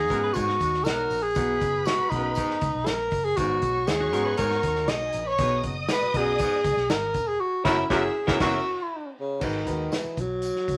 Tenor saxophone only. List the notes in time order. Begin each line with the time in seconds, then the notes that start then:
Already playing: G#4
0.33 F#4
0.84 A#4
1.23 G#4
1.86 F#4
2.10 D#4
2.86 A#4
3.24 G#4
3.36 F#4
3.87 G#4
4.38 A#4
4.89 D#5
5.19 D#5
5.27 C#5
5.92 B4
6.17 G#4
6.91 A#4
7.28 G#4
7.40 F#4
7.64 E4
7.90 G#4
8.41 F#4
9.20 C#3
9.44 D#3
9.95 E3
10.20 F#3